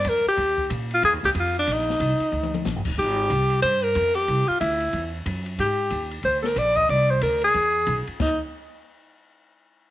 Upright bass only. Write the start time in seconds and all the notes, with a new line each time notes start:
0.05 F2
0.25 muted upright bass stroke
0.37 D#2
0.70 A#2
1.03 F2
1.12 D#2
1.24 D2
1.35 F2
1.68 A#1
2.00 C2
2.20 muted upright bass stroke
2.32 D2
2.65 A#1
2.76 G1
2.87 D#1
2.98 G#1
3.30 C2
3.63 G2
3.95 F2
4.28 C2
4.49 muted upright bass stroke
4.61 D2
4.93 E2
5.26 F#2
5.59 G#2
5.91 D#2
6.24 D2
6.56 A#1
6.89 C2
7.22 D2
7.54 E2
7.87 B1
8.08 muted upright bass stroke
8.20 D#2